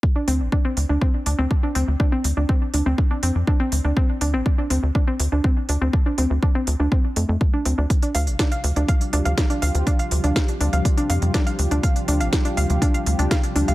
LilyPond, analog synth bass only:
\new Staff \with { instrumentName = "Analog synth bass" } { \clef bass \time 4/4 \key f \major \tempo 4 = 122 r8 d,16 a,,16 r8 d,16 d,16 r8 d,16 d,16 r8 d,16 d,16 | r8 d,16 d,16 r8 d,16 d,16 r8 f,16 f,16 r8 d,16 d,16 | r8 d,16 a,,16 r8 d,16 d,16 r8 d,16 d,16 r8 d,16 d,16 | r8 d,16 d,16 r8 d,16 d,16 r8 f,16 f,16 r8 d,16 d,16 |
r8 d,16 a,,16 r8 d,16 d,16 r8 d,16 d,16 r8 d,16 d,16 | r8 d,16 d,16 r8 d,16 d,16 r8 f,16 f,16 r8 d,16 d,16 | r8 d,16 a,,16 r8 d,16 d,16 r8 d,16 d,16 r8 d,16 d,16 | }